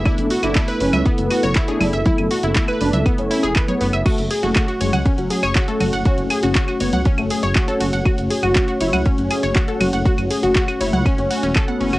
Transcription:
<<
  \new Staff \with { instrumentName = "Synth pluck" } { \time 4/4 \key fis \minor \tempo 4 = 120 e'16 r16 fis'16 e'16 e'16 b'16 b'16 e''16 b16 r16 fis'16 cis''16 e'16 gis'16 e'16 e''16 | e'16 r16 fis'16 e'16 e'16 b'16 b'16 e''16 b16 r16 e'16 gis'16 b'16 cis''16 b16 e''16 | fis'16 r16 gis'16 fis'16 fis'16 fis'16 cis''16 fis''16 cis'16 r16 gis'16 cis''16 fis'16 a'16 fis'16 fis''16 | fis'16 r16 gis'16 fis'16 fis'16 fis'16 cis''16 fis''16 cis'16 r16 gis'16 cis''16 fis'16 a'16 fis'16 fis''16 |
fis'16 r16 gis'16 fis'16 fis'16 fis'16 cis''16 fis''16 cis'16 r16 gis'16 cis''16 fis'16 a'16 fis'16 fis''16 | fis'16 r16 gis'16 fis'16 fis'16 fis'16 cis''16 fis''16 cis'16 r16 fis'16 cis'16 a'16 fis''16 cis'16 fis'16 | }
  \new Staff \with { instrumentName = "Analog synth pad" } { \time 4/4 \key fis \minor <a b e' a'>1~ | <a b e' a'>1 | <a cis' fis' cis''>1~ | <a cis' fis' cis''>1~ |
<a cis' fis' cis''>1~ | <a cis' fis' cis''>1 | }
  \new Staff \with { instrumentName = "Analog synth lead" } { \time 4/4 \key fis \minor d'8 r16 d'8 r16 cis'8 r16 b8 r8 d'8 r16 | e'8 r16 e'8 r16 d'8 r16 cis'8 r8 b8 r16 | a8 r16 a8 r16 gis8 r16 fis8 r8 a8 r16 | cis'8 r16 cis'8 r16 b8 r16 a8 r8 cis'8 r16 |
fis'8 r16 fis'8 r16 e'8 r16 cis'8 r8 fis'8 r16 | fis'8 r16 fis'8 r16 e'8 r16 cis'8 r8 b8 r16 | }
  \new Staff \with { instrumentName = "Detuned saw bass" } { \clef bass \time 4/4 \key fis \minor r16 fis,,16 r16 fis,,16 r8 fis,,16 cis,16 r16 fis,,16 r16 fis,,16 r8 fis,,16 fis,,16 | r16 fis,,16 r16 fis,,16 r8 fis,,16 cis,16 r16 fis,,16 r16 e,,16 r8 fis,,16 fis,,16 | r16 fis,,16 r16 fis,,16 r8 fis,,16 cis,16 r16 fis,,16 r16 fis,,16 r8 fis,,16 fis,,16 | r16 fis,,16 r16 fis,,16 r8 fis,,16 cis,16 r16 fis,,16 r16 fis,,16 r8 fis,,16 fis,,16 |
r16 fis,,16 r16 fis,,16 r8 fis,,16 cis,16 r16 fis,,16 r16 fis,,16 r8 fis,,16 fis,,16 | r16 fis,,16 r16 fis,,16 r8 fis,,16 cis,16 r16 fis,,16 r16 e,,16 r8 fis,,16 fis,,16 | }
  \new DrumStaff \with { instrumentName = "Drums" } \drummode { \time 4/4 <cl hh bd>16 hh16 hho16 <cl hh>16 <hc hh bd>16 hh16 hho16 <cl cgl hh>16 <hh bd>16 hh16 <cl hho>16 hh16 <hc hh bd>16 hh16 <cl cgl hho>16 hh16 | <cgl hh bd>16 <cl hh>16 hho16 hh16 <hc hh bd>16 <cl hh>16 hho16 <cgl hh>16 <cl hh bd>16 hh16 hho16 hh16 <hc cl hh bd>16 <cgl hh>16 hho16 <cl hh>16 | <cl cymc hh bd>16 hh16 <hho cymr>16 hh16 <hc cl hh bd>16 hh16 <hho cymr>16 <cl cgl hh>16 <hh bd>16 hh16 <hho cymr>16 <cl hh>16 <hc hh bd>16 hh16 <cl cgl hho cymr>16 hh16 | <hh bd>16 hh16 <cl hho cymr>16 hh16 <hc hh bd>16 <cl hh>16 <hho cymr>16 <cgl hh>16 <hh bd>16 <cl hh>16 <hho cymr>16 hh16 <hc cl hh bd>16 hh16 <hho cymr>16 hh16 |
<cl hh bd>16 hh16 <hho cymr>16 <cl hh>16 <hc hh bd>16 hh16 <hho cymr>16 <cl cgl hh>16 <hh bd>16 hh16 <cl hho cymr>16 hh16 <hc hh bd>16 hh16 <cl cgl hho cymr>16 hh16 | <hh bd>16 <cl hh>16 <hho cymr>16 hh16 <hc hh bd>16 <cl hh>16 <hho cymr>16 <cgl hh>16 <cl hh bd>16 hh16 <hho cymr>16 hh16 <hc cl hh bd>16 hh16 <hho cymr>16 <cl hh>16 | }
>>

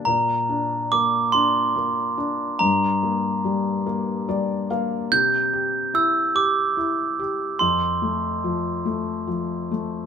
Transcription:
<<
  \new Staff \with { instrumentName = "Glockenspiel" } { \time 6/8 \key bes \major \tempo 4. = 48 bes''4 d'''8 c'''4. | bes''2~ bes''8 r8 | g'''4 e'''8 d'''4. | c'''2~ c'''8 r8 | }
  \new Staff \with { instrumentName = "Felt piano" } { \time 6/8 \key bes \major bes,8 d'8 bes8 d'8 bes8 d'8 | g,8 bes8 g8 bes8 <g d''>8 <bes f''>8 | c8 g'8 e'8 g'8 e'8 g'8 | f,8 a8 f8 a8 f8 a8 | }
>>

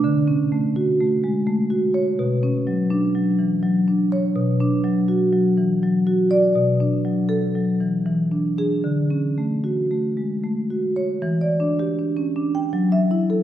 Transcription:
<<
  \new Staff \with { instrumentName = "Marimba" } { \time 3/4 \key d \lydian \tempo 4 = 82 r2 \tuplet 3/2 { r4 cis''8 } | r2 \tuplet 3/2 { r4 cis''8 } | r2 \tuplet 3/2 { r4 d''8 } | r4 a'8 r8 \tuplet 3/2 { r4 gis'8 } |
r2 \tuplet 3/2 { r4 cis''8 } | r4. r16 g''16 r16 e''8 r16 | }
  \new Staff \with { instrumentName = "Marimba" } { \time 3/4 \key d \lydian \tuplet 3/2 { d8 cis'8 a8 fis'8 a8 gis8 a8 fis'4 } | \tuplet 3/2 { b,8 cis'8 fis8 d'8 fis8 e8 fis8 d'4 } | \tuplet 3/2 { b,8 d'8 fis8 fis'8 fis8 e8 fis8 fis'4 } | \tuplet 3/2 { b,8 d'8 fis8~ fis8 fis8 e8 e8 d'8 d'8 } |
\tuplet 3/2 { d8 cis'8 a8 fis'8 a8 gis8 a8 fis'4 } | e16 d''16 d'16 g'16 d'16 cis'16 d'8 fis8 e'16 a'16 | }
>>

